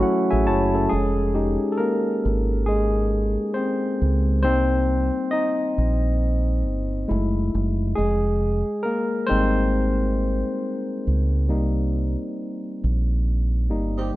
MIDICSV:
0, 0, Header, 1, 4, 480
1, 0, Start_track
1, 0, Key_signature, -4, "minor"
1, 0, Tempo, 882353
1, 491, Time_signature, 4, 2, 24, 8
1, 7703, End_track
2, 0, Start_track
2, 0, Title_t, "Tine electric piano"
2, 0, Program_c, 0, 4
2, 0, Control_c, 0, 64, 127
2, 0, Note_on_c, 0, 54, 76
2, 0, Note_on_c, 0, 57, 71
2, 0, Note_on_c, 0, 61, 77
2, 0, Note_on_c, 0, 64, 79
2, 0, Note_on_c, 0, 66, 88
2, 0, Note_on_c, 0, 76, 69
2, 14, Note_on_c, 0, 78, 55
2, 154, Note_off_c, 0, 78, 0
2, 166, Note_off_c, 0, 76, 0
2, 166, Note_on_c, 0, 76, 56
2, 166, Note_on_c, 0, 80, 62
2, 170, Note_on_c, 0, 68, 48
2, 247, Note_off_c, 0, 80, 0
2, 249, Note_off_c, 0, 76, 0
2, 251, Note_off_c, 0, 68, 0
2, 255, Note_on_c, 0, 73, 66
2, 255, Note_on_c, 0, 81, 68
2, 259, Note_off_c, 0, 64, 0
2, 259, Note_on_c, 0, 64, 57
2, 397, Note_off_c, 0, 73, 0
2, 399, Note_off_c, 0, 64, 0
2, 407, Note_on_c, 0, 69, 62
2, 409, Note_off_c, 0, 61, 0
2, 409, Note_on_c, 0, 61, 46
2, 426, Note_off_c, 0, 54, 0
2, 428, Note_off_c, 0, 57, 0
2, 476, Note_off_c, 0, 81, 0
2, 486, Note_on_c, 0, 68, 80
2, 498, Note_on_c, 0, 56, 54
2, 499, Control_c, 0, 64, 0
2, 502, Note_off_c, 0, 66, 0
2, 609, Control_c, 0, 64, 127
2, 633, Note_off_c, 0, 69, 0
2, 634, Note_off_c, 0, 61, 0
2, 728, Note_off_c, 0, 56, 0
2, 730, Note_on_c, 0, 67, 51
2, 734, Note_on_c, 0, 56, 50
2, 737, Note_on_c, 0, 63, 56
2, 937, Note_on_c, 0, 69, 52
2, 954, Note_off_c, 0, 68, 0
2, 966, Note_on_c, 0, 70, 75
2, 968, Note_off_c, 0, 69, 0
2, 978, Note_on_c, 0, 58, 58
2, 1074, Note_off_c, 0, 67, 0
2, 1076, Note_off_c, 0, 56, 0
2, 1078, Note_off_c, 0, 63, 0
2, 1433, Note_off_c, 0, 58, 0
2, 1447, Note_on_c, 0, 68, 75
2, 1460, Note_on_c, 0, 56, 61
2, 1463, Note_off_c, 0, 70, 0
2, 1914, Note_off_c, 0, 56, 0
2, 1926, Note_on_c, 0, 72, 77
2, 1937, Note_on_c, 0, 60, 58
2, 1944, Note_off_c, 0, 68, 0
2, 2392, Note_off_c, 0, 60, 0
2, 2401, Note_off_c, 0, 72, 0
2, 2407, Note_on_c, 0, 72, 90
2, 2410, Note_on_c, 0, 55, 47
2, 2413, Note_on_c, 0, 58, 44
2, 2417, Note_on_c, 0, 63, 55
2, 2418, Note_on_c, 0, 60, 76
2, 2419, Control_c, 0, 64, 0
2, 2508, Control_c, 0, 64, 127
2, 2868, Note_off_c, 0, 72, 0
2, 2873, Note_off_c, 0, 60, 0
2, 2889, Note_on_c, 0, 75, 89
2, 2893, Note_off_c, 0, 63, 0
2, 2899, Note_on_c, 0, 63, 66
2, 3109, Note_off_c, 0, 55, 0
2, 3110, Note_off_c, 0, 58, 0
2, 3851, Note_on_c, 0, 56, 53
2, 3854, Note_on_c, 0, 57, 50
2, 3857, Note_on_c, 0, 64, 57
2, 3858, Control_c, 0, 64, 0
2, 3944, Control_c, 0, 64, 127
2, 4068, Note_off_c, 0, 75, 0
2, 4073, Note_off_c, 0, 63, 0
2, 4309, Note_off_c, 0, 56, 0
2, 4311, Note_off_c, 0, 57, 0
2, 4313, Note_off_c, 0, 64, 0
2, 4327, Note_on_c, 0, 68, 84
2, 4338, Control_c, 0, 64, 0
2, 4339, Note_on_c, 0, 56, 63
2, 4448, Control_c, 0, 64, 127
2, 4794, Note_off_c, 0, 56, 0
2, 4803, Note_on_c, 0, 70, 86
2, 4818, Note_on_c, 0, 58, 63
2, 4824, Note_off_c, 0, 68, 0
2, 4913, Note_off_c, 0, 70, 0
2, 4924, Note_off_c, 0, 58, 0
2, 5040, Note_on_c, 0, 72, 92
2, 5049, Note_on_c, 0, 55, 49
2, 5052, Note_on_c, 0, 56, 51
2, 5056, Note_on_c, 0, 60, 74
2, 5056, Note_on_c, 0, 63, 63
2, 6229, Note_off_c, 0, 55, 0
2, 6230, Note_off_c, 0, 56, 0
2, 6232, Note_off_c, 0, 63, 0
2, 6249, Note_on_c, 0, 55, 52
2, 6253, Note_on_c, 0, 58, 44
2, 6255, Note_on_c, 0, 63, 51
2, 6258, Control_c, 0, 64, 0
2, 6339, Control_c, 0, 64, 127
2, 6593, Note_off_c, 0, 55, 0
2, 6596, Note_off_c, 0, 58, 0
2, 6596, Note_off_c, 0, 63, 0
2, 7453, Note_on_c, 0, 55, 48
2, 7456, Note_on_c, 0, 58, 42
2, 7457, Note_on_c, 0, 63, 56
2, 7664, Note_off_c, 0, 72, 0
2, 7670, Note_off_c, 0, 55, 0
2, 7672, Note_off_c, 0, 58, 0
2, 7672, Note_off_c, 0, 60, 0
2, 7673, Note_off_c, 0, 63, 0
2, 7699, Control_c, 0, 64, 0
2, 7703, End_track
3, 0, Start_track
3, 0, Title_t, "Horn section"
3, 0, Program_c, 1, 61
3, 7602, Note_on_c, 1, 55, 58
3, 7602, Note_on_c, 1, 67, 63
3, 7603, Note_on_c, 1, 60, 61
3, 7603, Note_on_c, 1, 63, 59
3, 7678, Note_off_c, 1, 55, 0
3, 7678, Note_off_c, 1, 60, 0
3, 7678, Note_off_c, 1, 63, 0
3, 7678, Note_off_c, 1, 67, 0
3, 7703, End_track
4, 0, Start_track
4, 0, Title_t, "Fingered electric bass"
4, 0, Program_c, 2, 33
4, 178, Note_on_c, 2, 33, 74
4, 266, Note_off_c, 2, 33, 0
4, 266, Note_on_c, 2, 30, 82
4, 475, Note_off_c, 2, 30, 0
4, 504, Note_on_c, 2, 29, 84
4, 850, Note_off_c, 2, 29, 0
4, 1226, Note_on_c, 2, 32, 73
4, 1829, Note_off_c, 2, 32, 0
4, 2185, Note_on_c, 2, 37, 76
4, 2424, Note_off_c, 2, 37, 0
4, 2424, Note_on_c, 2, 36, 80
4, 2770, Note_off_c, 2, 36, 0
4, 3145, Note_on_c, 2, 34, 78
4, 3625, Note_off_c, 2, 34, 0
4, 3625, Note_on_c, 2, 31, 91
4, 3834, Note_off_c, 2, 31, 0
4, 3866, Note_on_c, 2, 30, 88
4, 4075, Note_off_c, 2, 30, 0
4, 4105, Note_on_c, 2, 30, 77
4, 4314, Note_off_c, 2, 30, 0
4, 4344, Note_on_c, 2, 29, 86
4, 4690, Note_off_c, 2, 29, 0
4, 5065, Note_on_c, 2, 32, 68
4, 5668, Note_off_c, 2, 32, 0
4, 6024, Note_on_c, 2, 37, 74
4, 6264, Note_off_c, 2, 37, 0
4, 6264, Note_on_c, 2, 36, 79
4, 6610, Note_off_c, 2, 36, 0
4, 6984, Note_on_c, 2, 34, 80
4, 7464, Note_off_c, 2, 34, 0
4, 7464, Note_on_c, 2, 31, 88
4, 7674, Note_off_c, 2, 31, 0
4, 7703, End_track
0, 0, End_of_file